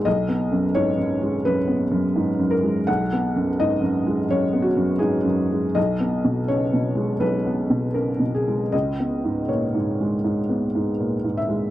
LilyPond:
<<
  \new Staff \with { instrumentName = "Felt piano" } { \time 4/4 \key b \major \tempo 4 = 82 dis''4 cis''4 b'4. ais'8 | fis''4 dis''4 cis''8 fis'8 gis'4 | dis''4 cis''4 b'4 ais'8 gis'8 | dis''4 cis''2~ cis''8 e''8 | }
  \new Staff \with { instrumentName = "Felt piano" } { \clef bass \time 4/4 \key b \major \tuplet 3/2 { b,,8 b8 fis,8 gis,8 fis,8 gis8 fis,8 b8 fis,8 gis,8 fis,8 gis8 } | \tuplet 3/2 { b,,8 b8 fis,8 gis,8 fis,8 gis8 fis,8 b8 fis,8 gis,8 fis,8 gis8 } | \tuplet 3/2 { b,,8 b8 b,8 cis8 b,8 gis8 b,,8 b8 b,8 cis8 b,8 gis8 } | \tuplet 3/2 { cis,8 b8 gis,8 ais,8 gis,8 gis8 gis,8 b8 gis,8 ais,8 gis,8 gis8 } | }
>>